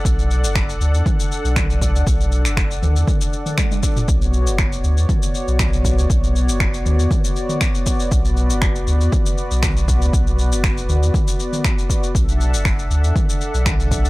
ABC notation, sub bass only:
X:1
M:4/4
L:1/16
Q:"Swing 16ths" 1/4=119
K:Bm
V:1 name="Sub bass" clef=bass
B,,,3 F,,,3 D,, E,, z3 B,,,4 D,, | B,,,3 F,,,3 D,, E,, z8 | B,,,3 F,,,3 D,, E,, z3 B,,,4 D,, | B,,,3 F,,,3 D,, E,, z8 |
B,,,3 F,,,3 D,, E,, z3 B,,,4 D,, | B,,,3 F,,,3 D,, E,, z8 | B,,,3 F,,,3 D,, E,, z3 B,,,4 D,, |]